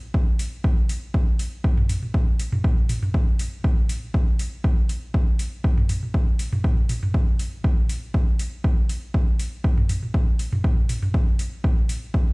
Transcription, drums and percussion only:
0.14 kick loud
0.39 open hi-hat medium
0.64 kick loud
0.89 open hi-hat medium
1.14 kick loud
1.39 open hi-hat medium
1.64 kick loud
1.77 mid tom medium
1.77 high tom medium
1.89 mid tom medium
1.89 open hi-hat medium
2.02 high tom medium
2.14 kick loud
2.39 open hi-hat medium
2.52 mid tom medium
2.52 high tom medium
2.64 kick loud
2.89 open hi-hat medium
2.89 high tom medium
3.03 mid tom medium
3.14 kick loud
3.39 open hi-hat medium
3.64 kick loud
3.64 high tom medium
3.89 open hi-hat medium
4.14 kick loud
4.39 open hi-hat medium
4.64 kick loud
4.89 open hi-hat medium
5.14 kick loud
5.39 open hi-hat medium
5.64 kick loud
5.78 mid tom medium
5.78 high tom medium
5.89 mid tom medium
5.89 open hi-hat medium
6.03 high tom medium
6.14 kick loud
6.39 open hi-hat medium
6.53 mid tom medium
6.53 high tom medium
6.64 kick loud
6.89 open hi-hat medium
6.89 high tom medium
7.03 mid tom medium
7.14 kick loud
7.39 open hi-hat medium
7.64 kick loud
7.64 high tom soft
7.89 open hi-hat medium
8.14 kick loud
8.39 open hi-hat medium
8.64 kick loud
8.89 open hi-hat medium
9.14 kick loud
9.39 open hi-hat medium
9.64 kick loud
9.78 mid tom medium
9.78 high tom medium
9.89 mid tom medium
9.89 open hi-hat medium
10.03 high tom medium
10.14 kick loud
10.39 open hi-hat medium
10.53 mid tom medium
10.53 high tom medium
10.64 kick loud
10.89 open hi-hat medium
10.89 high tom medium
11.02 mid tom medium
11.14 kick loud
11.39 open hi-hat medium
11.64 kick loud
11.64 high tom medium
11.89 open hi-hat medium
12.14 kick medium

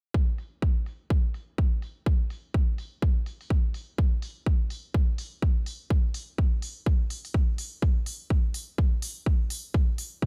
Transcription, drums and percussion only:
0.14 kick loud
0.38 open hi-hat medium
0.62 kick loud
0.86 open hi-hat medium
1.10 kick loud
1.34 open hi-hat medium
1.58 kick loud
1.82 open hi-hat loud
2.06 kick loud
2.30 open hi-hat loud
2.54 kick loud
2.78 open hi-hat loud
3.02 kick loud
3.26 open hi-hat loud
3.41 open hi-hat medium
3.50 kick loud
3.74 open hi-hat loud
3.98 kick loud
4.22 open hi-hat loud
4.46 kick loud
4.70 open hi-hat loud
4.94 kick loud
5.18 open hi-hat loud
5.42 kick loud
5.66 open hi-hat loud
5.90 kick loud
6.14 open hi-hat loud
6.38 kick loud
6.62 open hi-hat loud
6.86 kick loud
7.10 open hi-hat loud
7.25 open hi-hat medium
7.34 kick loud
7.58 open hi-hat loud
7.82 kick loud
8.06 open hi-hat medium
8.30 kick loud
8.54 open hi-hat loud
8.78 kick loud
9.02 open hi-hat loud
9.26 kick loud
9.50 open hi-hat loud
9.74 kick loud
9.98 open hi-hat medium
10.22 kick loud

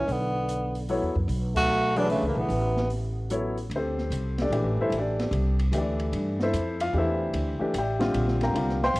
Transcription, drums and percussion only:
0.09 open hi-hat soft
0.49 closed hi-hat medium
0.75 open hi-hat soft
0.89 open hi-hat soft
1.16 kick soft
1.29 open hi-hat medium
1.56 kick medium
1.56 crash medium
1.96 open hi-hat soft
2.10 open hi-hat soft
2.50 open hi-hat soft
2.77 snare soft
2.90 open hi-hat soft
3.30 closed hi-hat medium
3.57 open hi-hat soft
3.71 ride medium
3.98 snare soft
4.12 hi-hat pedal medium
4.12 ride medium
4.38 snare soft
4.38 ride soft
4.52 ride medium
4.92 ride medium
5.19 snare soft
5.19 ride soft
5.33 ride medium
5.59 ride soft
5.73 hi-hat pedal medium
5.73 ride medium
6.00 ride soft
6.13 ride medium
6.40 snare medium
6.54 hi-hat pedal medium
6.54 ride medium
6.80 ride medium
7.34 ride medium
7.74 hi-hat pedal medium
7.74 ride medium
8.01 snare medium
8.01 ride soft
8.14 ride medium
8.28 snare soft
8.41 snare soft
8.41 ride soft
8.55 ride medium
8.69 snare soft
8.82 snare soft
8.96 hi-hat pedal medium
8.96 ride medium

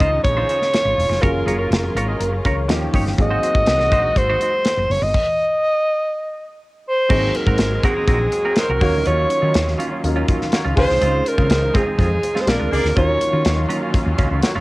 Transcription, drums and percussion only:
0.00 kick loud
0.00 closed hi-hat medium
0.25 kick medium
0.25 closed hi-hat medium
0.49 closed hi-hat medium
0.62 snare soft
0.74 snare medium
0.74 closed hi-hat medium
0.99 open hi-hat medium
1.12 snare soft
1.23 kick loud
1.23 closed hi-hat medium
1.48 closed hi-hat medium
1.72 snare loud
1.72 closed hi-hat medium
1.97 closed hi-hat medium
2.21 closed hi-hat medium
2.45 kick medium
2.45 closed hi-hat medium
2.69 snare medium
2.69 closed hi-hat medium
2.94 kick medium
2.94 open hi-hat medium
3.07 snare soft
3.18 kick medium
3.18 closed hi-hat medium
3.43 closed hi-hat medium
3.55 kick medium
3.67 snare loud
3.67 closed hi-hat medium
3.80 snare soft
3.92 kick loud
3.92 closed hi-hat medium
4.16 kick medium
4.16 closed hi-hat medium
4.41 closed hi-hat medium
4.65 snare medium
4.65 closed hi-hat loud
4.91 open hi-hat medium
5.14 kick medium
5.14 crash medium
7.10 kick loud
7.10 crash medium
7.35 closed hi-hat medium
7.47 kick medium
7.58 snare loud
7.58 closed hi-hat medium
7.83 kick loud
7.83 closed hi-hat medium
8.08 kick loud
8.08 closed hi-hat medium
8.32 closed hi-hat medium
8.56 snare loud
8.56 closed hi-hat medium
8.81 kick loud
8.81 open hi-hat medium
9.06 closed hi-hat medium
9.30 closed hi-hat medium
9.54 snare loud
9.54 closed hi-hat medium
9.68 snare soft
9.80 closed hi-hat medium
10.04 closed hi-hat loud
10.28 kick medium
10.28 closed hi-hat medium
10.41 snare soft
10.52 snare loud
10.52 closed hi-hat medium
10.77 kick loud
10.77 open hi-hat medium
10.90 snare soft
11.01 closed hi-hat medium
11.26 closed hi-hat medium
11.38 kick medium
11.50 snare loud
11.50 closed hi-hat medium
11.75 kick loud
11.75 closed hi-hat medium
11.99 kick loud
11.99 closed hi-hat medium
12.23 closed hi-hat medium
12.36 snare soft
12.47 snare loud
12.47 closed hi-hat medium
12.73 open hi-hat medium
12.85 snare soft
12.97 kick loud
12.97 closed hi-hat medium
13.21 closed hi-hat medium
13.45 snare loud
13.45 closed hi-hat medium
13.70 closed hi-hat medium
13.94 kick loud
13.94 closed hi-hat medium
14.18 kick medium
14.18 closed hi-hat medium
14.42 snare loud
14.42 closed hi-hat medium

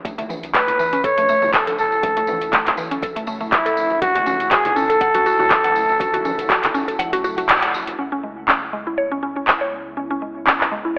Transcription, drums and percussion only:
0.05 kick loud
0.05 closed hi-hat medium
0.05 tambourine medium
0.05 high conga medium
0.18 closed hi-hat soft
0.18 tambourine soft
0.18 low conga medium
0.29 tambourine medium
0.29 high conga medium
0.43 closed hi-hat soft
0.43 tambourine soft
0.43 muted conga soft
0.54 kick loud
0.54 clap loud
0.54 closed hi-hat medium
0.54 tambourine soft
0.67 closed hi-hat soft
0.67 low conga medium
0.79 tambourine medium
0.79 muted conga soft
0.92 closed hi-hat soft
0.92 tambourine soft
1.04 kick loud
1.04 closed hi-hat medium
1.04 tambourine soft
1.18 closed hi-hat soft
1.18 tambourine soft
1.18 muted conga soft
1.18 high conga medium
1.29 tambourine medium
1.42 tambourine soft
1.42 high conga medium
1.42 low conga medium
1.53 kick loud
1.53 clap loud
1.53 closed hi-hat medium
1.53 tambourine medium
1.53 muted conga soft
1.67 closed hi-hat soft
1.67 tambourine soft
1.67 high conga medium
1.78 tambourine medium
1.92 tambourine soft
1.92 muted conga soft
2.03 kick loud
2.03 closed hi-hat medium
2.03 tambourine soft
2.03 high conga loud
2.17 closed hi-hat soft
2.17 tambourine soft
2.17 low conga medium
2.27 tambourine medium
2.27 high conga loud
2.41 closed hi-hat soft
2.41 tambourine soft
2.41 muted conga medium
2.52 kick loud
2.52 clap medium
2.52 closed hi-hat medium
2.52 tambourine soft
2.52 high conga medium
2.66 clap medium
2.66 closed hi-hat soft
2.66 tambourine soft
2.66 low conga medium
2.77 tambourine medium
2.91 closed hi-hat soft
2.91 tambourine soft
3.02 kick loud
3.02 closed hi-hat medium
3.02 tambourine soft
3.02 high conga medium
3.16 closed hi-hat soft
3.16 tambourine soft
3.16 muted conga soft
3.27 tambourine medium
3.41 tambourine soft
3.41 high conga medium
3.52 kick loud
3.52 clap loud
3.52 closed hi-hat medium
3.52 muted conga soft
3.65 closed hi-hat soft
3.65 tambourine soft
3.77 tambourine loud
3.77 high conga medium
3.90 tambourine soft
3.90 muted conga medium
4.02 kick loud
4.02 closed hi-hat medium
4.02 tambourine soft
4.02 high conga loud
4.15 closed hi-hat soft
4.15 tambourine soft
4.15 low conga medium
4.26 tambourine medium
4.26 high conga medium
4.40 closed hi-hat soft
4.40 tambourine soft
4.40 muted conga medium
4.51 kick loud
4.51 clap loud
4.51 closed hi-hat medium
4.51 tambourine medium
4.65 closed hi-hat soft
4.65 tambourine soft
4.65 low conga loud
4.76 tambourine medium
4.76 muted conga soft
4.90 closed hi-hat soft
4.90 tambourine soft
5.01 kick loud
5.01 closed hi-hat medium
5.01 tambourine soft
5.14 closed hi-hat soft
5.14 tambourine soft
5.14 muted conga medium
5.14 high conga medium
5.26 tambourine medium
5.39 tambourine soft
5.39 high conga medium
5.39 low conga medium
5.50 kick loud
5.50 clap loud
5.50 closed hi-hat medium
5.50 tambourine soft
5.50 muted conga soft
5.64 closed hi-hat soft
5.64 tambourine soft
5.64 high conga medium
5.76 tambourine medium
5.89 tambourine soft
5.89 muted conga medium
6.00 kick loud
6.00 closed hi-hat medium
6.00 tambourine medium
6.00 high conga loud
6.13 closed hi-hat soft
6.13 tambourine soft
6.13 low conga medium
6.25 tambourine medium
6.25 high conga loud
6.39 closed hi-hat soft
6.39 tambourine soft
6.39 muted conga medium
6.50 kick loud
6.50 clap loud
6.50 closed hi-hat medium
6.50 high conga medium
6.63 clap medium
6.63 closed hi-hat soft
6.63 tambourine soft
6.63 low conga loud
6.75 tambourine medium
6.88 closed hi-hat soft
6.88 tambourine soft
6.99 closed hi-hat medium
6.99 tambourine medium
6.99 high conga medium
7.13 closed hi-hat soft
7.13 tambourine soft
7.13 muted conga soft
7.24 tambourine medium
7.37 closed hi-hat soft
7.37 tambourine soft
7.37 high conga medium
7.49 clap loud
7.49 closed hi-hat medium
7.49 tambourine soft
7.49 muted conga soft
7.62 closed hi-hat soft
7.62 tambourine soft
7.74 tambourine medium
7.74 high conga medium
7.87 closed hi-hat soft
7.87 tambourine soft
7.87 muted conga medium
8.48 clap medium
9.47 clap loud
10.47 clap loud
10.60 clap medium

